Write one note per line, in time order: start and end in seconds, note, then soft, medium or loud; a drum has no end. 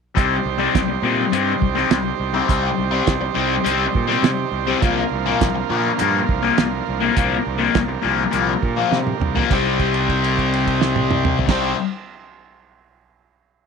0.15 0.37 C2 medium
0.15 0.35 C3 medium
0.15 0.35 G3 loud
0.15 4.79 G3 medium
0.15 0.35 C4 medium
0.15 4.79 C4 medium
0.15 4.79 D#4 medium
0.15 4.79 G4 medium
0.15 4.78 C5 medium
0.15 kick loud
0.15 closed hi-hat medium
0.44 0.66 C2 medium
0.44 low conga medium
0.58 0.79 C3 medium
0.58 0.79 G3 medium
0.58 0.78 C4 medium
0.75 0.95 C2 medium
0.75 kick loud
0.75 snare loud
0.75 closed hi-hat medium
0.88 muted distorted electric guitar stroke soft
1.02 1.23 A#2 loud
1.02 1.22 C3 medium
1.02 1.23 G3 medium
1.02 1.23 C4 loud
1.02 low conga medium
1.16 high conga medium
1.30 1.53 G2 medium
1.30 1.51 C3 medium
1.30 1.52 G3 medium
1.30 1.52 C4 medium
1.30 closed hi-hat medium
1.30 high conga medium
1.61 1.83 C2 loud
1.61 kick medium
1.61 high conga medium
1.75 1.95 C3 medium
1.75 1.95 G3 loud
1.75 1.95 C4 loud
1.75 snare soft
1.90 2.11 C2 medium
1.90 snare loud
1.90 closed hi-hat medium
1.90 low conga medium
2.05 high conga medium
2.20 2.40 C2 medium
2.33 2.46 C3 medium
2.33 2.47 G3 medium
2.33 2.47 C4 loud
2.33 high conga medium
2.47 2.70 C2 medium
2.47 2.67 C3 medium
2.47 2.68 G3 loud
2.47 2.68 C4 loud
2.47 kick loud
2.47 closed hi-hat medium
2.77 2.99 C2 medium
2.77 low conga medium
2.91 3.12 C3 medium
2.91 3.11 G3 medium
2.91 3.11 C4 medium
3.07 3.28 C2 medium
3.07 kick loud
3.07 snare loud
3.07 closed hi-hat medium
3.21 muted distorted electric guitar stroke medium
3.34 3.57 C2 medium
3.34 3.55 C3 medium
3.34 3.55 G3 medium
3.34 3.55 C4 loud
3.34 low conga medium
3.64 3.86 C2 medium
3.64 3.84 C3 medium
3.64 3.84 G3 medium
3.64 3.84 C4 medium
3.64 closed hi-hat medium
3.64 high conga medium
3.94 4.16 A#2 medium
3.94 kick loud
3.94 high conga medium
4.07 4.28 C3 medium
4.07 4.28 G3 medium
4.07 4.28 C4 loud
4.07 snare soft
4.22 4.44 C3 loud
4.22 snare loud
4.22 closed hi-hat medium
4.22 low conga medium
4.37 high conga medium
4.51 4.73 C2 medium
4.51 low conga medium
4.66 4.81 C3 medium
4.66 4.81 G3 medium
4.66 4.82 C4 loud
4.66 high conga medium
4.80 5.03 C2 loud
4.80 5.01 A#2 loud
4.80 9.44 F3 medium
4.80 5.01 F3 loud
4.80 9.45 A#3 medium
4.80 5.02 A#3 loud
4.80 9.45 D4 medium
4.80 7.13 F4 medium
4.80 9.45 A#4 medium
4.80 kick loud
4.80 closed hi-hat medium
5.09 5.32 C2 medium
5.09 low conga medium
5.25 5.46 A#2 medium
5.25 5.45 F3 medium
5.25 5.45 A#3 loud
5.41 5.62 C2 medium
5.41 kick loud
5.41 snare loud
5.41 closed hi-hat medium
5.54 muted distorted electric guitar stroke medium
5.69 5.89 A#2 medium
5.69 5.91 A#2 loud
5.69 5.89 F3 medium
5.69 5.90 A#3 medium
5.69 low conga medium
5.84 high conga medium
5.98 6.21 G2 medium
5.98 6.18 A#2 medium
5.98 6.19 F3 medium
5.98 6.18 A#3 loud
5.98 closed hi-hat medium
5.98 high conga medium
6.29 6.50 C2 medium
6.29 kick medium
6.29 high conga medium
6.43 6.63 A#2 medium
6.43 6.62 F3 medium
6.43 6.62 A#3 loud
6.58 6.79 C2 loud
6.58 snare loud
6.58 closed hi-hat medium
6.58 low conga medium
6.73 high conga medium
6.87 7.09 C2 medium
6.87 low conga medium
7.01 7.14 A#2 medium
7.01 7.15 F3 medium
7.01 7.16 A#3 loud
7.01 high conga medium
7.16 7.37 C2 loud
7.16 7.35 A#2 loud
7.16 7.36 F3 medium
7.16 7.36 A#3 loud
7.16 9.48 G4 medium
7.16 kick loud
7.16 closed hi-hat medium
7.46 7.67 C2 medium
7.46 low conga medium
7.58 7.79 A#2 medium
7.58 7.79 F3 medium
7.58 7.78 A#3 loud
7.75 7.96 C2 medium
7.75 kick loud
7.75 snare loud
7.75 closed hi-hat medium
7.88 muted distorted electric guitar stroke medium
8.02 8.25 C2 loud
8.02 8.22 A#2 medium
8.02 8.23 F3 loud
8.02 8.23 A#3 medium
8.02 low conga medium
8.19 high conga medium
8.31 8.54 C2 medium
8.31 8.51 A#2 medium
8.31 8.52 F3 medium
8.31 8.52 A#3 medium
8.31 closed hi-hat medium
8.62 8.83 A#2 medium
8.62 kick medium
8.62 high conga medium
8.77 8.97 A#2 medium
8.77 8.96 F3 medium
8.77 8.96 A#3 loud
8.91 9.12 C3 medium
8.91 snare medium
8.91 low conga medium
9.06 high tom medium
9.06 high conga medium
9.20 9.41 C2 loud
9.20 mid tom medium
9.20 low conga medium
9.35 9.49 A#2 medium
9.35 9.50 F3 medium
9.35 9.50 A#3 medium
9.35 floor tom medium
9.35 high conga medium
9.49 11.37 C2 medium
9.49 11.46 C3 loud
9.49 11.49 G3 loud
9.49 11.38 G3 medium
9.49 11.38 G4 medium
9.49 kick loud
9.49 crash medium
9.49 high conga medium
9.53 11.50 C4 loud
9.53 11.38 C4 medium
9.53 11.39 D#4 medium
9.53 11.38 C5 medium
9.79 kick medium
9.79 crash soft
9.94 crash soft
10.09 kick medium
10.09 crash soft
10.24 crash soft
10.38 kick medium
10.38 crash soft
10.53 crash medium
10.67 kick medium
10.67 crash soft
10.81 snare loud
10.96 high tom medium
11.11 mid tom medium
11.25 mid tom loud
11.39 floor tom loud
11.47 11.72 C2 medium
11.47 11.73 C3 medium
11.47 11.74 G3 loud
11.47 11.73 G3 medium
11.47 11.73 D#4 medium
11.47 11.73 G4 medium
11.47 11.73 C5 medium
11.47 kick loud
11.47 snare loud
11.47 crash loud
11.51 11.75 C4 loud
11.51 11.74 C4 medium